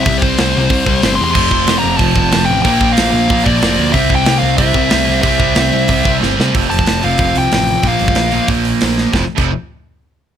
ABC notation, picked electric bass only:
X:1
M:4/4
L:1/16
Q:1/4=185
K:Cmix
V:1 name="Picked electric bass" clef=bass
C,,4 C,,2 C,,2 C,,2 C,,2 G,,,2 E,,2 | F,,,2 F,,,2 F,,,2 F,,,2 F,,,2 F,,,2 F,,,2 A,,,2 | B,,,4 B,,,2 B,,,2 B,,,2 B,,,2 F,,,2 D,,2 | C,,2 C,,2 C,,2 C,,2 C,,2 C,,2 C,,2 C,,2 |
C,,4 C,,2 C,,2 C,,2 C,,2 G,,,2 C,2 | F,,,2 F,,,2 F,,,2 F,,,2 F,,,2 C,,2 A,,,4 | B,,,2 G,,,2 B,,,4 B,,,4 B,,,4 | F,,, z2 F,,,2 z8 z3 |]